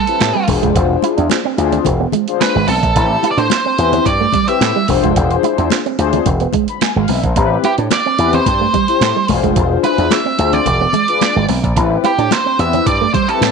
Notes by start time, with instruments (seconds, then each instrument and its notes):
Already playing: lead electric guitar A4
0.07 analog polysynth C4 E4 G4 B4, closed hi-hat
0.21 slap bass A2, snare, clap, closed hi-hat, high conga
0.35 clean electric guitar G3
0.48 slap bass E1, analog polysynth D4 F4 G#4 C5, muted clean electric guitar stroke, kick, open hi-hat, high conga
0.62 slap bass F1, clean electric guitar G#3, kick, closed hi-hat
0.75 slap bass E1, kick, closed hi-hat
0.90 muted clean electric guitar stroke
1.02 clean electric guitar E4, closed hi-hat, muted conga
1.17 slap bass E2, clean electric guitar D4, closed hi-hat
1.30 snare, clap, closed hi-hat, high conga
1.45 clean electric guitar C4
1.58 slap bass D2, analog polysynth D4 F4 G#4 C5, muted clean electric guitar stroke, closed hi-hat, muted conga
1.72 clean electric guitar C4, closed hi-hat, low conga
1.85 slap bass E1, muted clean electric guitar stroke, kick, closed hi-hat, muted conga, low conga
2.00 clean electric guitar B3
2.12 clean electric guitar G#3, closed hi-hat, muted conga, low conga
2.28 analog polysynth D4 F4 G#4 C5, closed hi-hat
2.41 lead electric guitar B4, muted clean electric guitar stroke, snare, clap, closed hi-hat, high conga
2.55 slap bass G#1, clean electric guitar G#3
2.68 slap bass B1, clean electric guitar C4, lead electric guitar A4, open hi-hat, high conga
2.83 slap bass A#1, kick, closed hi-hat
2.96 slap bass A1, analog polysynth C4 E4 G4 B4, kick, closed hi-hat
3.10 muted clean electric guitar stroke
3.23 clean electric guitar E4, closed hi-hat, muted conga
3.31 lead electric guitar D5
3.37 slap bass A2, clean electric guitar D4, lead electric guitar C5, closed hi-hat
3.50 snare, clap, closed hi-hat, high conga
3.65 clean electric guitar C4
3.78 slap bass E2, analog polysynth C4 E4 G4 B4, muted clean electric guitar stroke, closed hi-hat
3.92 clean electric guitar C4, closed hi-hat, low conga
4.05 slap bass G2, lead electric guitar D5, muted clean electric guitar stroke, kick, closed hi-hat, muted conga
4.21 clean electric guitar A3
4.33 clean electric guitar G3, kick, closed hi-hat, muted conga, low conga
4.48 analog polysynth C4 E4 G4 B4, lead electric guitar E5, closed hi-hat
4.61 slap bass A2, snare, clap, closed hi-hat, high conga
4.76 clean electric guitar G3
4.88 slap bass E1, analog polysynth D4 F4 G#4 C5, muted clean electric guitar stroke, kick, open hi-hat, high conga
5.03 slap bass F1, clean electric guitar G#3, kick, closed hi-hat
5.16 slap bass E1, kick, closed hi-hat
5.31 muted clean electric guitar stroke, closed hi-hat
5.43 clean electric guitar E4, closed hi-hat, muted conga
5.58 slap bass E2, clean electric guitar D4, closed hi-hat
5.70 snare, clap, closed hi-hat, high conga
5.86 clean electric guitar C4, closed hi-hat
5.98 slap bass D2, analog polysynth D4 F4 G#4 C5, muted clean electric guitar stroke, closed hi-hat, muted conga
6.13 clean electric guitar C4, closed hi-hat, low conga
6.26 slap bass E1, muted clean electric guitar stroke, kick, closed hi-hat, muted conga, low conga
6.40 clean electric guitar B3, closed hi-hat
6.53 clean electric guitar G#3, kick, closed hi-hat, muted conga, low conga
6.68 analog polysynth B5, closed hi-hat
6.81 analog polysynth G#5, muted clean electric guitar stroke, snare, clap, closed hi-hat, high conga
6.96 slap bass G#1, clean electric guitar G#3, analog polysynth F5
7.08 slap bass B1, clean electric guitar C4, analog polysynth E5, open hi-hat, high conga
7.23 slap bass A#1, analog polysynth C5, kick, closed hi-hat
7.36 slap bass A1, analog polysynth C4 E4 G4 B4, kick, closed hi-hat
7.51 muted clean electric guitar stroke
7.64 clean electric guitar E4, lead electric guitar G4, closed hi-hat, muted conga
7.78 slap bass A2, clean electric guitar D4, closed hi-hat
7.91 lead electric guitar D5, snare, clap, closed hi-hat, high conga
8.06 clean electric guitar C4
8.18 slap bass E2, analog polysynth C4 E4 G4 B4, muted clean electric guitar stroke, closed hi-hat
8.33 clean electric guitar C4, lead electric guitar C5, closed hi-hat, low conga
8.46 slap bass G2, muted clean electric guitar stroke, kick, closed hi-hat, muted conga
8.61 clean electric guitar A3
8.74 clean electric guitar G3, kick, closed hi-hat, muted conga, low conga
8.88 analog polysynth C4 E4 G4 C5, closed hi-hat
9.01 slap bass A2, snare, clap, closed hi-hat, high conga
9.16 clean electric guitar G3
9.28 slap bass E1, analog polysynth D4 F4 G#4 C5, muted clean electric guitar stroke, kick, open hi-hat, high conga
9.43 slap bass F1, clean electric guitar G#3, kick, closed hi-hat
9.56 slap bass E1, kick, closed hi-hat
9.71 muted clean electric guitar stroke
9.84 clean electric guitar E4, lead electric guitar B4, closed hi-hat, muted conga
9.98 slap bass E2, clean electric guitar D4, closed hi-hat
10.11 lead electric guitar E5, snare, clap, closed hi-hat, high conga
10.25 clean electric guitar C4
10.38 slap bass D2, analog polysynth D4 F4 G#4 C5, muted clean electric guitar stroke, closed hi-hat, muted conga
10.53 clean electric guitar C4, lead electric guitar D5, closed hi-hat, low conga
10.66 slap bass E1, muted clean electric guitar stroke, kick, closed hi-hat, muted conga, low conga
10.81 clean electric guitar B3
10.93 clean electric guitar G#3, closed hi-hat, muted conga, low conga
11.08 analog polysynth D4 F4 G#4 B4, closed hi-hat
11.21 muted clean electric guitar stroke, snare, clap, closed hi-hat, high conga
11.36 slap bass G#1, clean electric guitar G#3
11.49 slap bass B1, clean electric guitar C4, open hi-hat, high conga
11.63 slap bass A#1, kick, closed hi-hat
11.76 slap bass A1, analog polysynth C4 E4 G4 B4, kick, closed hi-hat
11.91 muted clean electric guitar stroke
12.04 clean electric guitar E4, lead electric guitar G4, closed hi-hat, muted conga
12.18 slap bass A2, clean electric guitar D4, closed hi-hat
12.31 lead electric guitar C5, snare, clap, closed hi-hat, high conga
12.46 clean electric guitar C4
12.59 slap bass E2, analog polysynth C4 E4 G4 B4, lead electric guitar E5, muted clean electric guitar stroke, closed hi-hat
12.73 clean electric guitar C4, closed hi-hat, low conga
12.86 slap bass G2, lead electric guitar D5, muted clean electric guitar stroke, kick, closed hi-hat, muted conga
13.01 clean electric guitar A3
13.14 clean electric guitar G3, lead electric guitar C5, kick, closed hi-hat, muted conga, low conga
13.28 analog polysynth C4 E4 G4 B4, lead electric guitar A4, closed hi-hat
13.41 slap bass A2, snare, clap, closed hi-hat, high conga